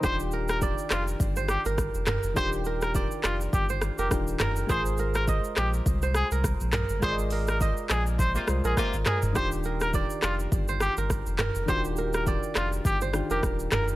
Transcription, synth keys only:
Already playing: A#4
0.01 D#3 D4 F4
0.06 G4
2.34 D#3 D4 F4
2.39 G4
4.10 D#3 D4 F4 G4
4.67 G#3 F4 A#4
4.72 C5
7.00 G#3 F4 A#4
7.05 D5
7.11 D#5
8.47 G#3 F4 A#4 C5
9.33 D#3 D4 F4
9.38 G4
11.66 D#3 D4 F4
11.71 F#4
11.77 G4
13.13 D#3 D4 F4 G4

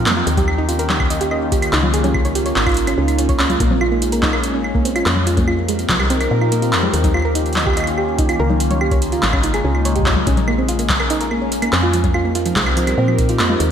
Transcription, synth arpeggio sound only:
0.06 A#3
0.17 F4
0.37 G4
0.58 D#4
0.69 F4
0.79 A#4
0.89 D#4
1.10 D#5
1.21 G4
1.31 D#5
1.52 G4
1.73 D#4
1.83 F4
1.94 G#4
2.04 C#4
2.25 C#5
2.35 G4
2.46 C#5
2.67 F4
2.87 C#4
2.98 C#4
3.19 C#4
3.29 C#5
3.39 C#4
3.50 F4
3.60 A#3
3.71 C4
3.81 F4
3.91 A#3
4.12 A#4
4.23 D#4
4.33 A#4
4.54 C#4
4.75 A#3
4.85 C4
4.96 F4
5.06 A#3
5.27 F4
5.37 A#3
5.48 F4
5.68 G#3
5.89 F3
6.00 G3
6.10 C4
6.21 F3
6.41 F4
6.52 A#3
6.62 F4
6.83 G#3
7.04 D#4
7.14 F4
7.25 A#4
7.35 D#4
7.56 D#5
7.67 G4
7.77 D#5
7.98 G4
8.19 D#4
8.29 F4
8.39 A#4
8.50 D#4
8.71 C#5
8.81 G4
8.92 C#5
9.12 F4
9.33 C#4
9.44 D#4
9.54 G#4
9.64 C#4
9.85 C#5
9.96 G4
10.06 C#5
10.27 C#4
10.48 A#3
10.58 C4
10.69 F4
10.79 A#3
11.00 A#4
11.10 D#4
11.21 A#4
11.31 A#3
11.41 C#4
11.62 A#3
11.73 C4
11.83 F4
11.94 F3
12.14 F4
12.25 A#3
12.35 F4
12.46 F3
12.56 G#3
12.77 F3
12.87 G3
12.98 C4
13.08 F3
13.29 F4
13.39 A#3
13.50 F4
13.60 D#4

